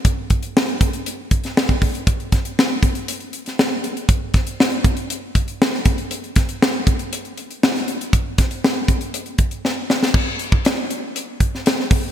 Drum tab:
CC |----------------|----------------|----------------|----------------|
HH |x-xx-xxxx-xx-xox|xxxx--xxxxxx--xx|x-xx-xxxx-xx--xx|xxxx--xxxxxx-xxx|
SD |----o------oo---|--o-o------oo---|--o-o-------oo--|--o-o-------oo--|
BD |o-o---o---o--oo-|o-o---o---------|o-o---o---o---o-|--o---o---------|

CC |----------------|x---------------|
HH |x-xx--xxxxxx----|--x-x-x-x-x-x-o-|
SD |--o-o-------o-oo|----o------ooo--|
BD |o-o---o---o-----|o--o------o---o-|